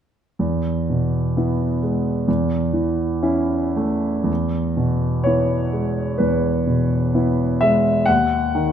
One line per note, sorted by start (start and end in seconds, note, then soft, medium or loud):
0.39 2.23 E2 soft
0.90 1.65 B2 soft
1.37 1.78 B3 soft
1.37 1.79 E4 soft
1.83 2.28 G#3 soft
2.28 4.22 E2 soft
2.73 3.55 E3 soft
3.23 3.73 C#4 soft
3.23 3.73 E4 soft
3.77 4.29 A3 soft
4.24 6.13 E2 soft
4.77 5.54 B2 soft
5.24 5.69 B3 soft
5.24 5.69 E4 soft
5.24 6.19 C#5 medium
5.73 6.48 G#3 soft
6.18 8.03 E2 soft
6.18 7.60 B4 soft
6.67 7.42 B2 soft
7.15 7.57 B3 soft
7.15 7.57 E4 soft
7.61 8.08 G#3 soft
7.61 8.07 E5 medium
8.06 8.72 D#2 soft
8.06 8.72 F#5 medium
8.55 8.72 D#3 soft